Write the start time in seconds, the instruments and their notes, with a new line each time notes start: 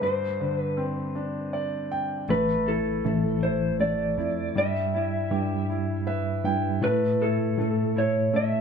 0.01 grand piano G2, electric slide guitar C5
0.40 grand piano D3
0.58 electric slide guitar B4
0.77 grand piano C4
1.15 grand piano D4
1.53 grand piano D5
1.92 grand piano G5
2.28 tine electric piano A1, grand piano A3, electric slide guitar B4
2.66 grand piano E4, electric slide guitar A4
3.05 tine electric piano A1, grand piano A3
3.42 grand piano E4, electric slide guitar C5
3.80 grand piano A3, electric slide guitar D5
4.17 tine electric piano F2, grand piano E4
4.56 tine electric piano G2, grand piano G3, electric slide guitar E5
4.94 grand piano E4
5.31 tine electric piano G2, grand piano G4
5.70 grand piano E4
6.07 grand piano B4 E5
6.45 tine electric piano G2, grand piano E4 G5
6.81 tine electric piano A2, grand piano A3, electric slide guitar B4
7.21 grand piano E4, electric slide guitar A4
7.58 tine electric piano A2, grand piano A3
7.96 grand piano E4, electric slide guitar C#5
8.33 grand piano A3, electric slide guitar E5